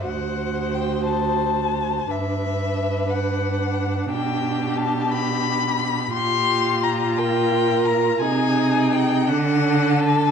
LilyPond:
<<
  \new Staff \with { instrumentName = "Violin" } { \time 6/8 \key g \major \tempo 4. = 58 fis''4 g''8 a''4. | e''4. fis''4. | g''4 a''8 b''4. | \key g \minor c'''4 bes''8 g''4 bes''8 |
aes''4 g''8 fis''4 a''8 | }
  \new Staff \with { instrumentName = "Violin" } { \time 6/8 \key g \major c''2. | b'2. | g'2. | \key g \minor g'4. bes'4. |
aes'4. a'4. | }
  \new Staff \with { instrumentName = "Viola" } { \time 6/8 \key g \major fis'2. | d'2.~ | d'2. | \key g \minor f'2. |
ees'4. d'4. | }
  \new Staff \with { instrumentName = "Cello" } { \clef bass \time 6/8 \key g \major d,2. | g,2. | b,2. | \key g \minor bes,2. |
c4. d4. | }
>>